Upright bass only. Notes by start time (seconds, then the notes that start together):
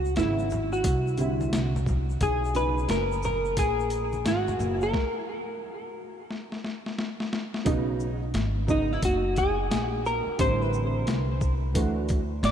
Already playing: C#2
0.16 G#1
0.84 C2
1.53 C2
2.21 B1
2.88 F#1
3.57 A#1
4.25 G#1
4.59 F#1
7.66 B1
8.34 G#1
9.03 F#1
9.71 A#1
10.27 muted upright bass stroke
10.39 A1
11.07 C2
11.75 D2
12.43 G#1